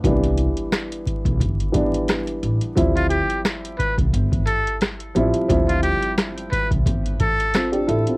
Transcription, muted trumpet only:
X:1
M:4/4
L:1/16
Q:"Swing 16ths" 1/4=88
K:Ddor
V:1 name="Muted trumpet"
z16 | z F G2 z2 B z3 A2 z4 | z F G2 z2 B z3 A3 z3 |]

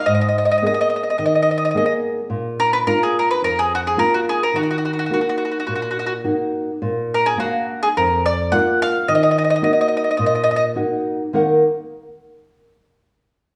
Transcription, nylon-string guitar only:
X:1
M:4/4
L:1/8
Q:"Swing" 1/4=106
K:Ebm
V:1 name="Nylon-string guitar"
A,,2 [B,CA]2 E,2 [B,CA]2 | B,,2 [B,=DF]2 F,,2 [B,DF]2 | E,2 [B,EG]2 B,,2 [B,EG]2 | B,,2 [B,=Df]2 F,,2 [B,DF]2 |
E,2 [B,EG]2 B,,2 [B,EG]2 | [E,B,EBeg] z6 z |]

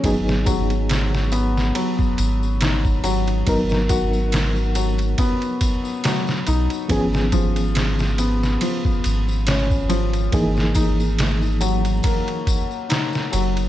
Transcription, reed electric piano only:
X:1
M:4/4
L:1/8
Q:"Swing 16ths" 1/4=70
K:G#m
V:1 name="Reed electric piano"
[F,B,DG]8 | [F,B,DA]8 | [^E,B,CG]8 | [E,A,DG]4- [E,A,DG] z3 |]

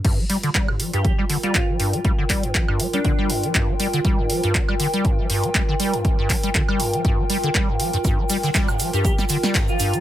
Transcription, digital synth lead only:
X:1
M:4/4
L:1/16
Q:"Swing 16ths" 1/4=120
K:Gm
V:1 name="Digital synth lead"
z6 z G G z2 F F z3 | z6 z D3 z6 | z16 | z16 |
z6 z G G z4 F3 |]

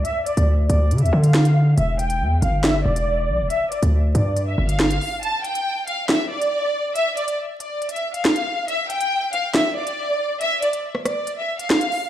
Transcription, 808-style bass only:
X:1
M:4/4
L:1/16
Q:1/4=139
K:Gmix
V:1 name="808-style bass" clef=bass
z3 D,,3 D,,2 D, D,, D,6 | E,,,4 E,,2 G,,,4 E,,,4 B,,, E,,, | z3 D,,3 G,,4 G,,,4 z2 | z16 |
z16 | z16 | z16 |]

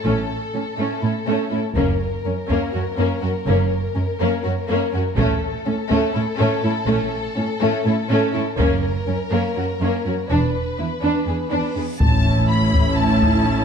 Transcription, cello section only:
X:1
M:7/8
L:1/8
Q:1/4=123
K:A
V:1 name="Cello section" clef=bass
A,, z A,, A,, A,, A,, A,, | F,, z F,, F,, F,, F,, F,, | F,, z F,, F,, F,, F,, F,, | A,, z A,, A,, A,, A,, A,, |
A,, z A,, A,, A,, A,, A,, | F,, z F,, F,, F,, F,, F,, | E,, z E,, E,, E,, E,, E,, | A,,6- A,, |]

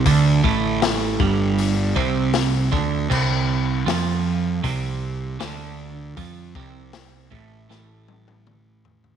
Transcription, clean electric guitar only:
X:1
M:4/4
L:1/8
Q:1/4=78
K:Am
V:1 name="Clean electric guitar" clef=bass
D, A,,2 G,,2 C,2 D, | C,2 F,2 C,2 D,2 | F, C,2 A,, A,,4 |]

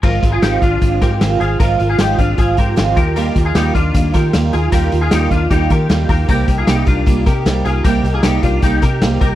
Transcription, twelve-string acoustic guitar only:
X:1
M:4/4
L:1/8
Q:1/4=154
K:Ablyd
V:1 name="Twelve-string acoustic guitar"
[A,,E,F,A,CF] [F,A,CF] [A,,E,F,A,CF] [F,A,CF] [F,A,CF] [F,A,CF] [A,,E,F,A,CF] [F,A,CF] | [A,,E,F,A,CF] [F,A,CF] [A,,E,F,A,CF] [F,A,CF] [F,A,CF] [F,A,CF] [A,,E,F,A,CF] [B,EF] | [E,G,B,EF] [B,EF] [E,G,B,EF] [B,EF] [G,B,EF] [B,EF] [E,G,B,EF] [B,EF] | [E,G,B,EF] [B,EF] [E,G,B,EF] [B,EF] [G,B,EF] [B,EF] [E,G,B,EF] [B,EF] |
[C,G,B,EG] [B,EG] [C,G,B,EG] [B,EG] [G,B,EG] [B,EG] [C,G,B,EG] [B,EG] | [C,G,B,EG] [B,EG] [C,G,B,EG] [B,EG] [G,B,EG] [B,EG] [C,G,B,EG] [B,EG] |]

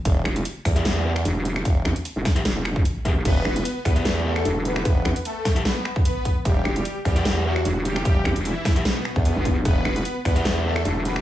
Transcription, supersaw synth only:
X:1
M:4/4
L:1/16
Q:"Swing 16ths" 1/4=150
K:Em
V:1 name="Supersaw synth"
z16 | z16 | [B,B]6 [B,B]3 z [A,A]3 z [B,B]2- | [B,B]4 [A,A]3 z [B,B]3 z [B,B]3 z |
[G,G]6 [G,G]3 z [F,F]3 z [G,G]2- | [G,G]4 [E,E]3 z [B,,B,]3 z [B,,B,]3 z | [B,B]6 [B,B]3 z [A,A]3 z [B,B]2 |]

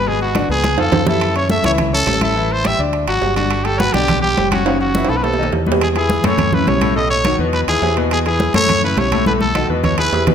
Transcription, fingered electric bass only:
X:1
M:4/4
L:1/8
Q:1/4=209
K:E
V:1 name="Fingered electric bass" clef=bass
G,,,3 C,,2 ^E,, F,,2- | F,,3 C,,3 A,,,2- | A,,,3 =D,,2 G,,, =G,,,2- | =G,,,3 B,,,3 F,,,2- |
F,,,3 B,,,3 E,,2- | E,,3 F,,3 B,,,2- | B,,,3 E,,2 D,, E,,2- | E,,3 F,,3 B,,,2- |
B,,,3 E,,2 D,, E,,2 |]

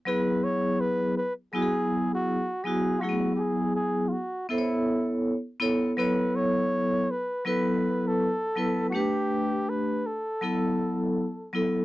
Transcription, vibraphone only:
X:1
M:4/4
L:1/8
Q:"Swing 16ths" 1/4=81
K:F#dor
V:1 name="Vibraphone"
[F,B,EG]3 z [F,B,EFG]2 z [F,B,EF] | [F,A,B,EG]3 z [B,EA=c^c]2 z [B,EAc] | [F,B,EAc]3 z [F,B,EAB]2 z [F,B,EAB] | [A,=D=GB]3 z [F,B,EA]2 z [F,B,EA] |]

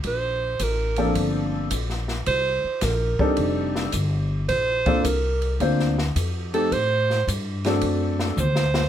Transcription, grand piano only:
X:1
M:4/4
L:1/8
Q:"Swing" 1/4=108
K:Bb
V:1 name="Grand piano"
z3 [F,B,CDA]3 z2 | z3 [G,CDEA]3 z2 | z [B,CDFA] z2 [B,CDFc] z2 [A,CEGA] | z3 [A,CD_GA]3 z2 |]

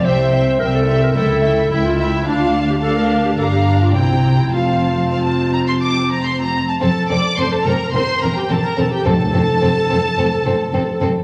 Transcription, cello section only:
X:1
M:4/4
L:1/8
Q:1/4=108
K:F
V:1 name="Cello section" clef=bass
C,,2 C,,2 ^C,,2 C,,2 | D,,4 G,,2 C,2 | F,,6- F,, z | F,, F,, F,, F,, E,, E,, E,, E,, |
F,, F,, F,, F,, F,, F,, F,, F,, |]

